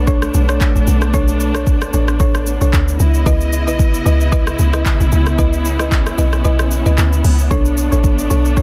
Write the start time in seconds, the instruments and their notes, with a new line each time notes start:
Already playing: log drum bass B1, string section A3 B3 D4
0.07 marimba D4 A4 C#5, kick, shaker
0.22 cross-stick, shaker
0.34 log drum bass B1, shaker
0.49 marimba D4 A4 C#5, cross-stick, shaker
0.61 kick, clap, shaker
0.76 log drum bass A1, shaker
0.87 log drum bass B1, shaker
1.02 cross-stick, shaker
1.14 log drum bass B1, marimba D4 A4 C#5, kick, shaker
1.28 shaker
1.40 shaker
1.55 marimba D4 A4 C#5, cross-stick, shaker
1.67 kick, shaker
1.82 cross-stick, shaker
1.93 log drum bass A1, marimba D4 A4 C#5, shaker
2.08 cross-stick, shaker
2.20 log drum bass A1, marimba D4 A4 C#5, kick, shaker
2.35 cross-stick, shaker
2.47 shaker
2.61 log drum bass B1, marimba D4 A4 C#5, shaker
2.73 log drum bass D2, kick, clap, shaker
2.88 shaker
2.99 log drum bass C#2, string section C#3 B3 E4 D#5, shaker
3.14 shaker
3.26 log drum bass C#2, marimba E4 B4 D#5, kick, shaker
3.41 shaker
3.53 shaker
3.67 log drum bass B1, marimba E4 B4 D#5, shaker
3.79 kick, shaker
3.94 shaker
4.06 log drum bass C#2, marimba E4 B4 D#5, shaker
4.21 shaker
4.32 marimba E4 B4 D#5, kick, shaker
4.47 cross-stick, shaker
4.59 log drum bass C#2, shaker
4.73 marimba E4 B4 D#5, cross-stick, shaker
4.86 kick, clap, shaker
5.00 log drum bass B1, shaker
5.12 log drum bass C#2, string section C#4, shaker
5.26 cross-stick, shaker
5.38 log drum bass C#2, marimba E4 B4 D#5, kick, shaker
5.53 shaker
5.65 shaker
5.79 marimba E4 B4 D#5, cross-stick, shaker
5.92 kick, clap, shaker
6.06 cross-stick, shaker
6.18 log drum bass B1, marimba E4 B4 D#5, shaker
6.33 cross-stick, shaker
6.44 log drum bass B1, marimba E4 B4 D#5, shaker
6.59 cross-stick, shaker
6.71 shaker
6.86 log drum bass C#2, marimba E4 B4 D#5, shaker
6.98 log drum bass D2, clap, shaker
7.13 shaker
7.24 log drum bass C#2, open hi-hat, shaker
7.39 shaker
7.51 log drum bass B1, string section A3 D4, marimba D4 A4 C#5, kick, shaker
7.65 shaker
7.77 shaker
7.92 log drum bass A1, marimba D4 A4 C#5, shaker
8.04 kick, shaker
8.19 shaker
8.30 log drum bass B1, marimba D4 A4 C#5, shaker
8.45 shaker
8.57 marimba D4 A4 C#5, kick, shaker